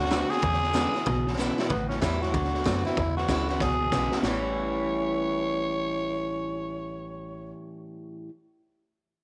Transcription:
0.00 0.24 D2 medium
0.00 0.32 F#4 loud
0.05 snare soft
0.11 0.30 D3 medium
0.11 0.29 D3 medium
0.11 0.30 A3 medium
0.11 0.29 B3 loud
0.11 0.31 C4 medium
0.11 0.29 F#4 loud
0.11 snare loud
0.11 hi-hat pedal medium
0.30 0.42 D3 medium
0.30 0.42 A3 medium
0.30 0.43 C4 medium
0.30 0.42 F#4 medium
0.30 1.38 G#4 loud
0.30 snare soft
0.38 snare soft
0.42 1.04 E2 loud
0.42 0.61 E2 medium
0.42 0.87 E2 medium
0.42 0.61 B2 loud
0.42 kick loud
0.42 snare soft
0.53 snare soft
0.63 0.73 E2 medium
0.63 0.74 B2 medium
0.63 snare soft
0.73 0.93 E2 medium
0.73 0.93 C#3 medium
0.73 0.93 D3 loud
0.73 0.93 G#3 loud
0.73 0.94 B3 medium
0.73 0.93 E4 loud
0.73 snare loud
0.73 hi-hat pedal loud
0.94 1.05 E2 medium
0.94 1.05 B2 medium
0.94 1.06 B3 medium
0.94 1.05 E4 medium
0.94 snare soft
1.06 1.51 B1 medium
1.06 1.25 E2 medium
1.06 1.67 B2 loud
1.06 1.25 B2 loud
1.06 kick loud
1.06 snare soft
1.27 1.37 E2 medium
1.27 1.37 B2 medium
1.27 snare soft
1.33 snare soft
1.37 1.56 E2 medium
1.37 1.57 C#3 medium
1.37 1.57 D3 medium
1.37 1.57 G#3 medium
1.37 1.58 B3 medium
1.37 1.57 E4 medium
1.37 snare medium
1.37 hi-hat pedal medium
1.58 1.69 E2 medium
1.58 1.69 B2 medium
1.58 1.71 B3 medium
1.58 1.69 E4 medium
1.58 snare medium
1.69 2.01 A1 medium
1.69 2.31 A2 medium
1.69 1.88 A2 medium
1.69 1.88 E3 medium
1.69 1.88 B3 medium
1.69 kick loud
1.69 snare soft
1.89 2.01 A2 medium
1.89 2.01 E3 medium
1.89 2.00 C#4 medium
1.89 snare soft
2.01 2.32 E2 medium
2.01 2.20 A2 medium
2.01 2.21 E3 medium
2.01 2.20 F#3 medium
2.01 2.21 G3 loud
2.01 2.21 C#4 loud
2.01 2.23 E4 medium
2.01 2.21 E4 loud
2.01 kick medium
2.01 snare loud
2.01 hi-hat pedal medium
2.22 2.32 A2 medium
2.22 2.33 F#3 medium
2.22 2.34 C#4 medium
2.22 2.33 E4 medium
2.22 2.85 F#4 loud
2.22 snare soft
2.34 2.64 D2 medium
2.34 2.63 D3 medium
2.34 2.52 D3 medium
2.34 2.52 A3 medium
2.34 kick loud
2.34 snare soft
2.44 snare soft
2.54 2.64 D3 medium
2.54 2.64 A3 medium
2.54 snare soft
2.64 2.84 F#2 loud
2.64 2.84 D3 medium
2.64 2.83 D3 medium
2.64 2.85 A3 medium
2.64 2.84 B3 loud
2.64 2.85 C4 loud
2.64 2.84 F#4 medium
2.64 kick medium
2.64 snare loud
2.64 hi-hat pedal medium
2.85 2.92 F#2 soft
2.85 2.96 D3 medium
2.85 2.96 B3 medium
2.85 2.97 C4 medium
2.85 3.15 E4 loud
2.85 2.96 F#4 medium
2.85 snare soft
2.97 3.58 E2 loud
2.97 3.15 E2 medium
2.97 3.28 E2 medium
2.97 3.15 B2 medium
2.97 kick loud
2.97 snare soft
3.17 3.28 E2 medium
3.17 3.28 B2 medium
3.17 3.46 F#4 loud
3.17 snare soft
3.28 3.59 D2 medium
3.28 3.47 E2 medium
3.28 3.47 C#3 medium
3.28 3.48 D3 medium
3.28 3.48 G#3 loud
3.28 3.48 B3 medium
3.28 3.48 E4 loud
3.28 kick medium
3.28 snare loud
3.28 hi-hat pedal medium
3.49 3.59 E2 medium
3.49 3.59 C#3 medium
3.49 3.61 B3 medium
3.49 3.60 E4 medium
3.49 3.64 F#4 medium
3.49 snare soft
3.60 3.91 C#2 medium
3.60 3.79 E2 medium
3.60 3.79 B2 medium
3.60 4.22 B2 loud
3.60 4.13 G#4 loud
3.60 kick loud
3.60 snare medium
3.80 3.91 E2 medium
3.80 3.91 B2 medium
3.92 4.11 B1 medium
3.92 4.10 E2 medium
3.92 4.10 C#3 loud
3.92 4.11 D3 medium
3.92 4.12 G#3 medium
3.92 4.12 B3 medium
3.92 4.11 E4 medium
3.92 kick medium
3.92 snare medium
3.92 hi-hat pedal medium
4.12 4.22 E2 medium
4.12 4.23 C#3 medium
4.12 4.25 B3 soft
4.12 4.24 E4 medium
4.12 snare medium
4.23 7.54 A1 medium
4.23 8.28 A2 medium
4.23 8.28 E3 loud
4.23 8.28 E3 medium
4.23 8.28 G3 medium
4.23 8.29 G3 medium
4.23 8.29 C#4 loud
4.23 8.29 E4 loud
4.23 8.29 B4 loud
4.23 7.54 C#5 medium
4.23 snare loud
4.27 8.30 E4 loud

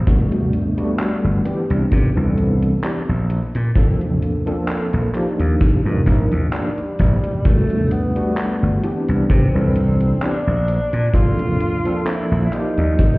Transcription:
0.06 0.72 G3 medium
0.06 0.72 A3 medium
0.06 0.72 B3 medium
0.06 0.72 D4 medium
0.06 0.72 F#4 medium
0.06 kick loud
0.06 closed hi-hat medium
0.32 closed hi-hat soft
0.53 closed hi-hat medium
0.77 1.40 G3 medium
0.77 1.40 A3 medium
0.77 1.40 B3 medium
0.77 1.40 D4 medium
0.77 1.41 F#4 medium
0.77 closed hi-hat soft
0.99 clap loud
0.99 closed hi-hat medium
1.24 1.39 G1 medium
1.45 2.10 E3 medium
1.45 2.10 B3 medium
1.45 2.11 C4 medium
1.45 2.11 D4 medium
1.45 2.11 G4 medium
1.45 closed hi-hat medium
1.70 1.85 C2 medium
1.70 closed hi-hat soft
1.92 2.09 C3 medium
1.92 kick loud
1.92 closed hi-hat medium
2.16 2.74 C2 medium
2.16 2.78 E3 medium
2.16 2.79 B3 medium
2.16 2.79 C4 medium
2.16 2.79 D4 medium
2.16 2.79 A4 medium
2.38 closed hi-hat medium
2.63 closed hi-hat soft
2.83 2.97 E3 medium
2.83 2.97 B3 medium
2.83 2.98 C4 medium
2.83 2.98 D4 medium
2.83 2.98 G4 medium
2.83 clap loud
2.83 closed hi-hat medium
3.09 3.40 A#1 medium
3.30 closed hi-hat medium
3.55 3.70 A#2 medium
3.55 closed hi-hat medium
3.76 4.41 F3 medium
3.76 4.41 A#3 medium
3.76 4.41 C4 medium
3.76 4.41 D4 medium
3.76 4.42 A4 medium
3.76 kick loud
3.76 closed hi-hat medium
4.01 closed hi-hat soft
4.22 closed hi-hat medium
4.46 5.09 F3 medium
4.46 5.09 A#3 medium
4.46 5.09 C4 medium
4.46 5.10 D4 medium
4.46 5.10 A4 medium
4.46 closed hi-hat soft
4.68 clap loud
4.68 closed hi-hat medium
4.93 5.08 A#1 medium
4.93 closed hi-hat soft
5.14 5.79 F3 medium
5.14 5.79 A#3 medium
5.14 5.80 D4 medium
5.14 5.80 D#4 medium
5.14 5.80 G4 medium
5.14 clap soft
5.14 closed hi-hat medium
5.40 5.54 D#2 medium
5.40 closed hi-hat soft
5.61 kick loud
5.61 closed hi-hat medium
5.85 6.00 G2 medium
5.85 6.47 F3 medium
5.85 6.48 A#3 medium
5.85 6.48 D4 medium
5.85 6.48 D#4 medium
5.85 6.48 A#4 medium
6.06 6.24 A#1 medium
6.06 kick medium
6.06 closed hi-hat medium
6.32 6.47 D#2 medium
6.32 closed hi-hat soft
6.52 6.66 F3 medium
6.52 7.47 G3 medium
6.52 6.66 A#3 medium
6.52 6.67 D4 medium
6.52 6.67 D#4 medium
6.52 6.67 G4 medium
6.52 clap loud
6.52 closed hi-hat medium
6.78 closed hi-hat soft
6.99 7.17 A#1 medium
6.99 kick medium
6.99 closed hi-hat medium
7.24 closed hi-hat medium
7.45 8.10 G3 medium
7.45 8.10 A3 medium
7.45 7.93 A3 loud
7.45 8.11 B3 medium
7.45 8.11 D4 medium
7.45 8.11 F#4 medium
7.45 kick loud
7.45 closed hi-hat medium
7.70 closed hi-hat soft
7.91 8.84 B3 loud
7.91 closed hi-hat medium
8.16 8.78 G3 medium
8.16 8.79 A3 medium
8.16 8.79 B3 medium
8.16 8.79 D4 medium
8.16 8.79 F#4 loud
8.16 closed hi-hat soft
8.37 clap loud
8.37 closed hi-hat medium
8.63 8.77 G1 medium
8.83 9.48 E3 medium
8.83 9.49 B3 medium
8.83 9.49 C4 medium
8.83 9.49 D4 medium
8.83 9.49 G4 medium
8.83 closed hi-hat medium
9.08 9.24 C2 medium
9.08 closed hi-hat soft
9.30 9.47 C3 loud
9.30 10.24 C4 medium
9.30 kick loud
9.30 closed hi-hat medium
9.54 10.12 C2 medium
9.54 10.17 E3 medium
9.54 10.17 C4 medium
9.54 10.17 D4 medium
9.54 10.18 A4 medium
9.54 10.17 B4 medium
9.76 closed hi-hat medium
10.01 closed hi-hat soft
10.21 10.35 E3 medium
10.21 10.36 B3 medium
10.21 10.36 C4 medium
10.21 10.36 D4 medium
10.21 11.16 D4 loud
10.21 10.36 G4 medium
10.21 clap loud
10.21 closed hi-hat medium
10.47 10.78 A#1 medium
10.68 closed hi-hat medium
10.93 11.08 A#2 medium
10.93 closed hi-hat soft
11.14 11.79 F3 medium
11.14 11.79 A#3 medium
11.14 11.79 C4 medium
11.14 11.80 D4 medium
11.14 12.09 F4 loud
11.14 11.80 A4 medium
11.14 kick medium
11.14 closed hi-hat medium
11.39 closed hi-hat soft
11.60 closed hi-hat medium
11.85 12.47 F3 medium
11.85 12.48 A#3 medium
11.85 12.48 C4 medium
11.85 12.48 D4 medium
11.85 12.48 A4 loud
11.85 closed hi-hat soft
12.07 12.55 E4 loud
12.07 clap loud
12.07 closed hi-hat medium
12.32 12.46 A#1 medium
12.53 13.18 F3 medium
12.53 13.18 A#3 medium
12.53 13.18 D#4 medium
12.53 13.18 G4 medium
12.53 13.18 D5 medium
12.53 clap soft
12.53 closed hi-hat medium
12.78 12.93 D#2 medium
12.78 closed hi-hat soft
12.99 kick loud
12.99 closed hi-hat medium

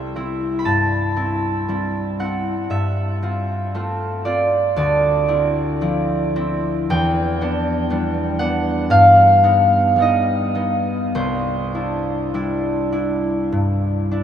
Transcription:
0.00 2.49 C2 soft
0.00 1.68 G3 soft
0.00 1.92 A3 soft
0.00 0.15 C4 soft
0.00 0.15 E4 soft
0.00 2.50 C5 medium
0.00 2.69 E5 medium
0.16 1.15 C4 soft
0.16 1.16 E4 soft
0.59 0.71 B5 medium
0.65 2.69 G2 soft
0.65 4.55 A5 medium
1.16 1.68 C4 soft
1.16 1.68 E4 soft
1.68 5.58 G3 soft
1.68 2.19 C4 soft
1.68 2.19 E4 soft
2.19 3.21 C4 soft
2.19 2.76 E4 soft
2.19 3.07 F#5 medium
2.70 4.81 G2 soft
2.70 5.33 E5 medium
3.23 3.73 C4 soft
3.23 3.74 F4 soft
3.74 6.94 A3 soft
3.74 4.24 C4 soft
3.74 4.24 F4 soft
4.25 5.27 C4 soft
4.25 6.94 F4 soft
4.25 4.76 D5 medium
4.76 6.94 D2 medium
4.76 8.67 D5 medium
5.28 5.81 C4 soft
5.28 5.81 E4 soft
5.81 6.94 F3 soft
5.81 6.35 C4 soft
5.81 6.35 E4 soft
6.36 6.94 C4 soft
6.36 8.95 E4 soft
6.90 8.95 E2 medium
6.90 10.80 G5 medium
7.41 7.90 B3 soft
7.41 7.90 D4 medium
7.90 9.96 G3 soft
7.90 8.39 B3 soft
7.90 8.39 D4 soft
8.39 9.43 B3 soft
8.39 8.95 D4 medium
8.39 9.27 F#5 medium
8.90 11.19 G2 medium
8.90 11.19 F5 medium
9.44 9.97 B3 soft
9.44 9.98 D#4 soft
9.96 12.33 G3 soft
9.96 10.54 B3 soft
9.96 10.54 D#4 soft
10.02 11.19 D#5 medium
10.55 11.19 B3 soft
10.55 11.19 D#4 soft
11.15 14.23 C2 medium
11.15 14.23 C5 medium
11.74 12.33 D4 soft
11.74 12.34 E4 soft
12.34 14.23 G3 soft
12.34 12.91 D4 soft
12.34 12.91 E4 soft
12.92 14.10 D4 soft
12.92 14.11 E4 soft
13.52 14.23 G2 soft
14.11 14.23 D4 soft
14.11 14.23 E4 soft

